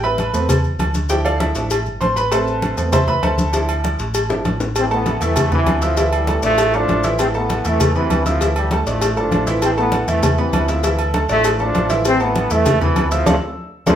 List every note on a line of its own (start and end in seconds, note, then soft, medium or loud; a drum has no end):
0.00 0.28 A1 loud
0.00 0.46 B4 medium
0.00 0.46 E5 medium
0.00 0.46 B5 loud
0.00 high conga soft
0.00 maracas soft
0.18 cowbell medium
0.18 high conga medium
0.18 low agogo medium
0.18 maracas soft
0.33 0.76 E2 loud
0.33 0.54 A3 medium
0.33 0.54 B3 soft
0.33 0.55 C4 medium
0.33 high conga soft
0.33 low agogo medium
0.33 maracas medium
0.49 cowbell loud
0.49 high conga soft
0.49 low conga medium
0.49 low agogo loud
0.49 maracas loud
0.64 high conga soft
0.64 maracas soft
0.79 1.50 D2 medium
0.79 cowbell medium
0.79 high conga medium
0.79 low timbale medium
0.79 low agogo loud
0.79 maracas soft
0.94 cowbell medium
0.94 high conga medium
0.94 maracas medium
1.09 1.53 F3 medium
1.09 1.54 D4 soft
1.09 1.39 E4 medium
1.09 1.25 G4 medium
1.09 1.25 G5 medium
1.09 cowbell medium
1.09 high conga soft
1.09 low agogo medium
1.09 maracas medium
1.25 1.40 F4 medium
1.25 1.39 A4 medium
1.25 1.40 D5 medium
1.25 1.40 F5 medium
1.25 high conga soft
1.25 low agogo loud
1.25 maracas soft
1.40 1.54 E4 medium
1.40 1.83 A4 medium
1.40 1.83 E5 medium
1.40 cowbell medium
1.40 high conga loud
1.40 low agogo medium
1.40 maracas soft
1.55 1.84 A1 loud
1.55 1.69 F3 soft
1.55 1.69 D4 soft
1.55 1.69 E4 medium
1.55 cowbell medium
1.55 high conga soft
1.55 maracas medium
1.70 cowbell loud
1.70 high conga soft
1.70 low agogo loud
1.70 maracas loud
1.86 2.00 G1 medium
1.86 high conga soft
1.86 maracas soft
2.01 2.72 A1 medium
2.01 2.16 C5 medium
2.01 2.16 C6 loud
2.01 cowbell medium
2.01 high conga medium
2.01 low agogo medium
2.01 maracas soft
2.16 2.30 B4 medium
2.16 2.31 B5 loud
2.16 cowbell medium
2.16 high conga soft
2.16 maracas medium
2.31 2.75 A3 medium
2.31 2.76 C4 medium
2.31 2.75 A4 medium
2.31 2.75 B4 medium
2.31 2.74 C5 medium
2.31 2.74 E5 medium
2.31 2.74 A5 medium
2.31 cowbell loud
2.31 high conga soft
2.31 low agogo loud
2.31 maracas medium
2.47 high conga soft
2.47 maracas soft
2.62 cowbell medium
2.62 high conga medium
2.62 low agogo medium
2.62 maracas soft
2.77 3.20 E2 loud
2.77 2.91 A3 soft
2.77 2.91 B3 soft
2.77 2.91 C4 soft
2.77 high conga soft
2.77 low agogo medium
2.77 maracas medium
2.92 3.08 C5 medium
2.92 3.06 E5 medium
2.92 3.08 A5 medium
2.92 3.07 C6 loud
2.92 cowbell loud
2.92 high conga soft
2.92 low conga loud
2.92 low agogo loud
2.92 maracas loud
3.08 3.23 B4 medium
3.08 3.22 E5 medium
3.08 3.23 B5 loud
3.08 high conga soft
3.08 low conga medium
3.08 maracas soft
3.23 3.94 D2 medium
3.23 3.66 A4 medium
3.23 3.66 C5 medium
3.23 3.66 E5 medium
3.23 3.66 A5 medium
3.23 cowbell medium
3.23 high conga medium
3.23 low agogo loud
3.23 maracas soft
3.38 cowbell medium
3.38 high conga medium
3.38 maracas medium
3.52 3.96 F3 medium
3.52 3.97 D4 soft
3.52 3.97 E4 medium
3.52 cowbell loud
3.52 high conga soft
3.52 low agogo medium
3.52 maracas medium
3.69 high conga soft
3.69 low agogo loud
3.69 maracas soft
3.84 cowbell medium
3.84 high conga loud
3.84 low agogo medium
3.84 maracas soft
3.99 4.28 A1 loud
3.99 cowbell medium
3.99 high conga soft
3.99 maracas medium
4.14 cowbell loud
4.14 high conga soft
4.14 low agogo loud
4.14 maracas loud
4.29 4.44 G1 medium
4.29 4.43 F3 soft
4.29 4.43 D4 soft
4.29 4.44 E4 soft
4.29 high bongo loud
4.29 high conga soft
4.29 maracas soft
4.45 5.16 A1 medium
4.45 cowbell medium
4.45 high conga medium
4.45 low timbale medium
4.45 low agogo medium
4.45 maracas soft
4.60 cowbell medium
4.60 low bongo medium
4.60 high conga soft
4.60 maracas medium
4.76 4.91 E3 medium
4.76 4.85 C4 loud
4.76 cowbell loud
4.76 high conga soft
4.76 low agogo loud
4.76 maracas medium
4.91 5.22 E3 medium
4.91 5.16 A3 medium
4.91 5.20 B3 medium
4.91 5.16 A4 medium
4.91 5.16 A5 medium
4.91 high conga soft
4.91 maracas soft
5.06 cowbell medium
5.06 high conga medium
5.06 low agogo medium
5.06 maracas soft
5.20 5.63 E2 loud
5.20 5.52 C3 medium
5.20 5.46 E3 medium
5.20 5.53 E3 medium
5.20 5.53 A3 loud
5.20 5.46 E4 medium
5.20 5.47 E5 medium
5.20 high conga soft
5.20 low agogo medium
5.20 maracas medium
5.36 cowbell loud
5.36 high conga soft
5.36 low conga loud
5.36 low agogo loud
5.36 maracas loud
5.51 5.95 B2 medium
5.51 5.95 C3 medium
5.51 5.81 E3 loud
5.51 5.77 B3 medium
5.51 5.77 B4 medium
5.51 5.77 B5 medium
5.51 high conga soft
5.51 low conga medium
5.51 maracas soft
5.66 6.37 D2 medium
5.66 cowbell medium
5.66 high conga medium
5.66 low timbale medium
5.66 low agogo loud
5.66 maracas soft
5.82 6.40 A2 medium
5.82 6.11 F3 loud
5.82 5.94 E4 medium
5.82 5.95 E5 medium
5.82 5.95 E6 medium
5.82 cowbell medium
5.82 maracas medium
5.97 6.22 E3 medium
5.97 6.22 E4 medium
5.97 6.23 E5 medium
5.97 cowbell loud
5.97 high conga soft
5.97 low agogo medium
5.97 maracas medium
6.12 6.43 E3 medium
6.12 6.42 G3 medium
6.12 high conga soft
6.12 low agogo loud
6.12 maracas soft
6.27 6.40 A3 medium
6.27 6.40 A4 medium
6.27 6.40 A5 medium
6.27 cowbell medium
6.27 high conga medium
6.27 low agogo medium
6.27 maracas soft
6.42 6.85 A1 loud
6.42 7.01 E3 medium
6.42 6.75 F3 medium
6.42 6.72 A3 loud
6.42 6.68 D4 medium
6.42 6.68 D5 medium
6.42 6.68 D6 medium
6.42 cowbell medium
6.42 high conga soft
6.42 maracas medium
6.58 cowbell loud
6.58 high conga soft
6.58 low agogo loud
6.58 maracas loud
6.73 7.17 F3 medium
6.73 6.99 A3 medium
6.73 7.17 A3 medium
6.73 7.05 D4 loud
6.73 6.99 A4 medium
6.73 6.99 A5 medium
6.73 high conga soft
6.73 maracas soft
6.88 7.59 A1 medium
6.88 cowbell medium
6.88 high conga medium
6.88 low timbale medium
6.88 low agogo medium
6.88 maracas soft
7.03 7.29 E3 loud
7.03 7.29 E4 loud
7.03 7.29 E5 loud
7.03 cowbell medium
7.03 high conga soft
7.03 maracas medium
7.19 7.35 E3 medium
7.19 7.27 C4 loud
7.19 cowbell loud
7.19 high conga soft
7.19 low agogo loud
7.19 maracas loud
7.34 7.64 E3 medium
7.34 7.59 A3 medium
7.34 7.63 B3 medium
7.34 7.59 A4 medium
7.34 7.60 A5 medium
7.34 high conga soft
7.34 maracas soft
7.50 cowbell medium
7.50 high conga loud
7.50 low agogo medium
7.50 maracas soft
7.65 8.07 E2 loud
7.65 7.95 C3 medium
7.65 7.90 E3 medium
7.65 7.94 E3 medium
7.65 7.96 A3 loud
7.65 7.90 E4 medium
7.65 7.90 E5 medium
7.65 high conga soft
7.65 low agogo medium
7.65 maracas medium
7.80 cowbell loud
7.80 high conga soft
7.80 low conga loud
7.80 low agogo loud
7.80 maracas loud
7.95 8.38 B2 medium
7.95 8.38 C3 medium
7.95 8.24 E3 loud
7.95 8.20 B3 medium
7.95 8.20 B4 medium
7.95 8.20 B5 medium
7.95 high conga soft
7.95 maracas soft
8.10 8.81 D2 loud
8.10 cowbell medium
8.10 high conga medium
8.10 low timbale medium
8.10 low agogo loud
8.10 maracas soft
8.26 8.83 A2 medium
8.26 8.54 F3 loud
8.26 8.38 E4 medium
8.26 8.38 E5 medium
8.26 8.39 E6 medium
8.26 cowbell medium
8.26 high conga medium
8.26 maracas medium
8.41 8.66 E3 medium
8.41 8.66 E4 medium
8.41 8.66 E5 medium
8.41 cowbell loud
8.41 high conga soft
8.41 low agogo medium
8.41 maracas loud
8.56 8.86 E3 medium
8.56 8.85 G3 loud
8.56 high conga soft
8.56 low agogo loud
8.56 maracas soft
8.71 8.84 A3 medium
8.71 8.84 A4 medium
8.71 8.84 A5 medium
8.71 cowbell medium
8.71 high conga medium
8.71 low agogo medium
8.71 maracas soft
8.86 9.14 A1 loud
8.86 9.43 E3 medium
8.86 9.16 F3 medium
8.86 9.16 A3 loud
8.86 9.11 D4 medium
8.86 9.12 D5 medium
8.86 9.12 D6 medium
8.86 cowbell medium
8.86 high conga soft
8.86 maracas medium
9.01 cowbell loud
9.01 high conga soft
9.01 low agogo loud
9.01 maracas loud
9.16 9.31 G1 medium
9.16 9.59 F3 medium
9.16 9.42 A3 medium
9.16 9.59 A3 medium
9.16 9.47 D4 loud
9.16 9.42 A4 medium
9.16 9.42 A5 medium
9.16 high conga soft
9.16 maracas soft
9.31 10.02 A1 medium
9.31 cowbell medium
9.31 high conga medium
9.31 low timbale medium
9.31 low agogo medium
9.31 maracas soft
9.47 9.72 E3 loud
9.47 9.72 E4 loud
9.47 9.72 E5 medium
9.47 cowbell medium
9.47 high conga soft
9.47 maracas medium
9.62 9.77 E3 medium
9.62 9.70 C4 loud
9.62 cowbell loud
9.62 high conga soft
9.62 low agogo loud
9.62 maracas medium
9.77 10.07 E3 medium
9.77 10.02 A3 medium
9.77 10.06 B3 medium
9.77 10.02 A4 medium
9.77 10.02 A5 medium
9.77 high conga soft
9.77 maracas soft
9.92 cowbell medium
9.92 high conga medium
9.92 low agogo medium
9.92 maracas soft
10.07 10.50 E2 medium
10.07 10.39 C3 medium
10.07 10.33 E3 medium
10.07 10.38 E3 medium
10.07 10.36 A3 loud
10.07 10.33 E4 medium
10.07 10.33 E5 medium
10.07 high conga soft
10.07 low agogo medium
10.07 maracas medium
10.23 cowbell loud
10.23 high conga soft
10.23 low conga loud
10.23 low agogo loud
10.23 maracas loud
10.38 10.81 B2 medium
10.38 10.81 C3 medium
10.38 10.69 E3 loud
10.38 10.63 B3 medium
10.38 10.63 B4 medium
10.38 10.63 B5 medium
10.38 high conga soft
10.38 maracas soft
10.53 11.24 D2 medium
10.53 cowbell medium
10.53 high conga medium
10.53 low timbale medium
10.53 low agogo loud
10.53 maracas soft
10.68 11.26 A2 medium
10.68 11.00 F3 medium
10.68 10.81 E4 medium
10.68 10.81 E5 medium
10.68 10.81 E6 medium
10.68 cowbell medium
10.68 maracas medium
10.84 11.09 E3 medium
10.84 11.09 E4 medium
10.84 11.09 E5 medium
10.84 cowbell loud
10.84 high conga soft
10.84 low agogo medium
10.84 maracas loud
10.99 high conga soft
10.99 low agogo loud
10.99 maracas soft
11.14 11.26 A3 medium
11.14 11.27 A4 medium
11.14 11.27 A5 medium
11.14 cowbell medium
11.14 high conga medium
11.14 low agogo medium
11.14 maracas soft
11.29 11.71 A1 loud
11.29 11.87 E3 medium
11.29 11.60 F3 medium
11.29 11.59 A3 loud
11.29 11.54 D4 medium
11.29 11.54 D5 medium
11.29 11.54 D6 medium
11.29 cowbell medium
11.29 high conga soft
11.29 maracas medium
11.44 cowbell loud
11.44 high conga soft
11.44 low agogo loud
11.44 maracas loud
11.59 12.03 F3 medium
11.59 11.84 A3 medium
11.59 12.03 A3 medium
11.59 11.91 D4 loud
11.59 11.85 A4 medium
11.59 11.85 A5 medium
11.59 high conga soft
11.59 maracas soft
11.74 12.45 A1 medium
11.74 cowbell medium
11.74 high conga medium
11.74 low timbale medium
11.74 low agogo medium
11.74 maracas soft
11.90 12.15 E3 loud
11.90 12.15 E4 loud
11.90 12.15 E5 loud
11.90 cowbell medium
11.90 high conga soft
11.90 maracas medium
12.05 12.21 E3 medium
12.05 12.20 C4 loud
12.05 cowbell loud
12.05 high conga soft
12.05 low agogo medium
12.05 maracas loud
12.20 12.50 E3 medium
12.20 12.45 A3 medium
12.20 12.51 B3 loud
12.20 12.45 A4 medium
12.20 12.45 A5 medium
12.20 high conga soft
12.20 maracas soft
12.35 cowbell medium
12.35 high conga loud
12.35 low agogo medium
12.35 maracas soft
12.50 12.93 E2 medium
12.50 12.81 C3 medium
12.50 12.76 E3 medium
12.50 12.80 E3 medium
12.50 12.82 A3 loud
12.50 12.76 E4 medium
12.50 12.76 E5 medium
12.50 high conga soft
12.50 low agogo medium
12.50 maracas medium
12.65 cowbell loud
12.65 high conga soft
12.65 low conga loud
12.65 low agogo loud
12.65 maracas loud
12.81 13.24 B2 medium
12.81 13.24 C3 medium
12.81 13.10 E3 loud
12.81 13.06 B3 medium
12.81 13.06 B4 medium
12.81 13.06 B5 medium
12.81 high conga soft
12.81 low conga medium
12.81 maracas soft
12.96 cowbell medium
12.96 high conga medium
12.96 low timbale medium
12.96 low agogo loud
12.96 maracas soft
13.11 13.26 A2 medium
13.11 13.27 F3 loud
13.11 13.24 E4 medium
13.11 13.24 E5 medium
13.11 13.24 E6 loud
13.11 cowbell medium
13.11 maracas medium
13.26 13.37 D2 loud
13.26 13.35 E3 medium
13.26 13.35 F3 medium
13.26 13.34 A3 medium
13.26 13.36 F4 loud
13.26 13.36 A4 loud
13.26 13.36 D5 loud
13.26 cowbell loud
13.26 high conga loud
13.26 high timbale loud
13.26 maracas loud
13.86 13.95 D2 loud
13.86 13.95 E3 loud
13.86 13.95 F3 loud
13.86 13.95 A3 medium
13.86 13.95 F4 loud
13.86 13.95 A4 loud
13.86 13.95 D5 loud
13.86 cowbell medium
13.86 high conga loud
13.86 high timbale loud
13.86 maracas loud